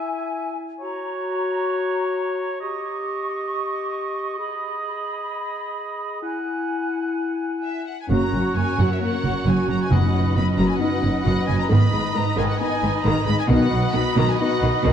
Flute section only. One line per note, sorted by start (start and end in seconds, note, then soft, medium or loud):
0.00 0.58 G#5 soft
0.80 2.57 A#5 medium
2.60 4.36 C#6 soft
4.39 6.19 B5 medium
6.22 7.83 G#5 soft
8.09 8.96 C#6 soft
9.01 9.89 C#6 medium
9.93 10.36 B5 soft
10.38 10.80 B5 soft
10.81 11.25 B5 medium
11.27 11.70 B5 soft
11.71 12.58 B5 medium
12.60 13.24 B5 medium
13.50 13.93 B5 medium
13.94 14.38 B5 medium
14.39 14.93 B5 medium